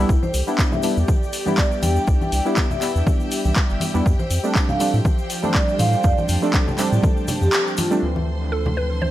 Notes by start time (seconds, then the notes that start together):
Already playing: B3 D4 E4 A4 G5 A5
0.00 D4 E4 G4
0.06 C2 G4 D5 G5, kick, shaker
0.23 C5, high conga, shaker
0.34 C2, open hi-hat, shaker
0.47 G3 B3 D4 E4, shaker
0.59 kick, clap, shaker
0.72 E5, high conga, low conga, shaker
0.83 G3 B3 D4 E4, open hi-hat, shaker
0.97 E2, shaker
1.08 kick, high conga, shaker
1.17 E5
1.23 shaker
1.33 open hi-hat, shaker
1.46 G3 B3 D4 E4, high conga, shaker
1.58 D5, kick, clap, shaker
1.71 shaker
1.83 E2 G5, open hi-hat, high conga, shaker
1.96 shaker
2.07 C2, kick, shaker
2.21 G5, high conga, shaker
2.32 C2, open hi-hat, shaker
2.45 G3 B3 D4 E4, shaker
2.57 kick, clap, shaker
2.71 E5, high conga, low conga, shaker
2.81 G3 B3 D4 E4, clap, open hi-hat, shaker
2.96 E2, shaker
3.06 kick, high conga, shaker
3.20 shaker
3.31 open hi-hat, shaker
3.45 C2, high conga, shaker
3.56 kick, clap, shaker
3.70 G1, shaker
3.80 open hi-hat, high conga, shaker
3.94 E2 G3 B3 D4 E4, shaker
4.06 F2 F3, kick, shaker
4.19 C5, high conga, shaker
4.29 F2 C5, open hi-hat, shaker
4.44 G3 A3 C4 D4, shaker
4.55 kick, clap, shaker
4.69 F5, high conga, low conga, shaker
4.80 G3 A3 C4 D4, open hi-hat, shaker
4.94 A2, shaker
5.05 G5, kick, high conga, shaker
5.18 shaker
5.30 open hi-hat, shaker
5.42 G3 A3 C4 D4, high conga, shaker
5.54 D5 A5, kick, clap, shaker
5.68 shaker
5.79 A2 F5, open hi-hat, high conga, shaker
5.93 F5, shaker
6.04 F2 D5, kick, shaker
6.18 high conga, shaker
6.29 F2, open hi-hat, shaker
6.42 G3 A3 C4 D4, shaker
6.53 A4, kick, clap, shaker
6.68 high conga, low conga, shaker
6.77 G3 A3 C4 D4, clap, open hi-hat, shaker
6.92 A2, shaker
7.03 kick, high conga, shaker
7.17 shaker
7.28 open hi-hat, low conga, shaker
7.41 F2 G4, high conga, shaker
7.53 clap, shaker
7.68 shaker
7.77 F4, open hi-hat, high conga, shaker
7.91 G3 A3 C4 D4, shaker
8.01 D2 E3 F3 A3 C4 D4 C5 C6
8.16 high conga
8.52 A4
8.61 A4
8.66 high conga, low conga
8.77 B4
9.02 C5, high conga